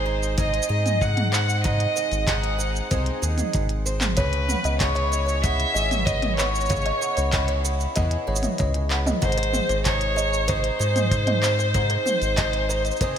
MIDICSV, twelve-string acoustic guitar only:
0, 0, Header, 1, 2, 480
1, 0, Start_track
1, 0, Key_signature, 4, "minor"
1, 0, Tempo, 631579
1, 1249, Time_signature, 4, 2, 24, 8
1, 10020, End_track
2, 0, Start_track
2, 0, Title_t, "Twelve-string acoustic guitar"
2, 0, Program_c, 0, 25
2, 0, Note_on_c, 0, 44, 86
2, 0, Note_on_c, 0, 60, 58
2, 0, Note_on_c, 0, 68, 68
2, 44, Note_on_c, 0, 63, 64
2, 276, Note_off_c, 0, 60, 0
2, 279, Note_off_c, 0, 63, 0
2, 283, Note_on_c, 0, 60, 67
2, 291, Note_off_c, 0, 68, 0
2, 291, Note_on_c, 0, 63, 60
2, 294, Note_on_c, 0, 68, 69
2, 522, Note_off_c, 0, 68, 0
2, 526, Note_on_c, 0, 68, 72
2, 995, Note_off_c, 0, 60, 0
2, 1004, Note_on_c, 0, 60, 62
2, 1237, Note_off_c, 0, 44, 0
2, 1246, Note_on_c, 0, 44, 90
2, 1478, Note_off_c, 0, 60, 0
2, 1487, Note_on_c, 0, 60, 60
2, 1718, Note_off_c, 0, 60, 0
2, 1724, Note_off_c, 0, 63, 0
2, 1727, Note_on_c, 0, 60, 65
2, 1733, Note_on_c, 0, 63, 66
2, 1734, Note_off_c, 0, 68, 0
2, 1737, Note_on_c, 0, 68, 69
2, 1956, Note_off_c, 0, 63, 0
2, 1965, Note_on_c, 0, 63, 60
2, 2200, Note_off_c, 0, 60, 0
2, 2204, Note_off_c, 0, 63, 0
2, 2209, Note_on_c, 0, 60, 69
2, 2213, Note_on_c, 0, 63, 63
2, 2215, Note_off_c, 0, 68, 0
2, 2218, Note_on_c, 0, 68, 70
2, 2444, Note_off_c, 0, 68, 0
2, 2447, Note_on_c, 0, 68, 64
2, 2923, Note_off_c, 0, 60, 0
2, 2932, Note_on_c, 0, 60, 63
2, 3167, Note_on_c, 0, 49, 90
2, 3168, Note_off_c, 0, 44, 0
2, 3218, Note_off_c, 0, 60, 0
2, 3219, Note_off_c, 0, 63, 0
2, 3409, Note_on_c, 0, 59, 61
2, 3641, Note_off_c, 0, 59, 0
2, 3650, Note_on_c, 0, 59, 58
2, 3655, Note_on_c, 0, 64, 57
2, 3656, Note_off_c, 0, 68, 0
2, 3659, Note_on_c, 0, 68, 69
2, 3881, Note_off_c, 0, 64, 0
2, 3890, Note_on_c, 0, 64, 61
2, 4121, Note_off_c, 0, 59, 0
2, 4126, Note_off_c, 0, 64, 0
2, 4130, Note_on_c, 0, 59, 68
2, 4135, Note_on_c, 0, 64, 64
2, 4137, Note_off_c, 0, 68, 0
2, 4140, Note_on_c, 0, 68, 73
2, 4367, Note_off_c, 0, 68, 0
2, 4370, Note_on_c, 0, 68, 68
2, 4842, Note_off_c, 0, 59, 0
2, 4851, Note_on_c, 0, 59, 61
2, 5077, Note_off_c, 0, 49, 0
2, 5086, Note_on_c, 0, 49, 88
2, 5320, Note_off_c, 0, 59, 0
2, 5329, Note_on_c, 0, 59, 60
2, 5560, Note_off_c, 0, 59, 0
2, 5566, Note_off_c, 0, 64, 0
2, 5569, Note_on_c, 0, 59, 60
2, 5575, Note_on_c, 0, 64, 63
2, 5577, Note_off_c, 0, 68, 0
2, 5580, Note_on_c, 0, 68, 63
2, 5800, Note_off_c, 0, 64, 0
2, 5810, Note_on_c, 0, 64, 64
2, 6037, Note_off_c, 0, 59, 0
2, 6043, Note_off_c, 0, 64, 0
2, 6046, Note_on_c, 0, 59, 66
2, 6052, Note_on_c, 0, 64, 67
2, 6053, Note_off_c, 0, 68, 0
2, 6056, Note_on_c, 0, 68, 71
2, 6283, Note_off_c, 0, 68, 0
2, 6286, Note_on_c, 0, 68, 69
2, 6758, Note_off_c, 0, 59, 0
2, 6767, Note_on_c, 0, 59, 65
2, 7004, Note_on_c, 0, 44, 94
2, 7008, Note_off_c, 0, 49, 0
2, 7056, Note_off_c, 0, 59, 0
2, 7059, Note_off_c, 0, 64, 0
2, 7245, Note_on_c, 0, 60, 62
2, 7487, Note_off_c, 0, 60, 0
2, 7488, Note_on_c, 0, 63, 64
2, 7490, Note_off_c, 0, 68, 0
2, 7493, Note_on_c, 0, 68, 69
2, 7712, Note_off_c, 0, 63, 0
2, 7721, Note_on_c, 0, 63, 64
2, 7957, Note_off_c, 0, 63, 0
2, 7961, Note_on_c, 0, 60, 62
2, 7966, Note_off_c, 0, 68, 0
2, 7966, Note_on_c, 0, 63, 64
2, 7969, Note_on_c, 0, 68, 68
2, 8200, Note_off_c, 0, 68, 0
2, 8203, Note_on_c, 0, 68, 70
2, 8674, Note_off_c, 0, 60, 0
2, 8683, Note_on_c, 0, 60, 68
2, 8916, Note_off_c, 0, 44, 0
2, 8925, Note_on_c, 0, 44, 92
2, 9154, Note_off_c, 0, 60, 0
2, 9163, Note_on_c, 0, 60, 60
2, 9394, Note_off_c, 0, 60, 0
2, 9399, Note_off_c, 0, 63, 0
2, 9403, Note_on_c, 0, 60, 65
2, 9408, Note_off_c, 0, 68, 0
2, 9408, Note_on_c, 0, 63, 64
2, 9411, Note_on_c, 0, 68, 71
2, 9638, Note_off_c, 0, 63, 0
2, 9647, Note_on_c, 0, 63, 64
2, 9880, Note_off_c, 0, 60, 0
2, 9884, Note_off_c, 0, 63, 0
2, 9889, Note_on_c, 0, 60, 71
2, 9894, Note_off_c, 0, 68, 0
2, 9894, Note_on_c, 0, 63, 65
2, 9897, Note_on_c, 0, 68, 74
2, 10020, Note_off_c, 0, 44, 0
2, 10020, Note_off_c, 0, 60, 0
2, 10020, Note_off_c, 0, 63, 0
2, 10020, Note_off_c, 0, 68, 0
2, 10020, End_track
0, 0, End_of_file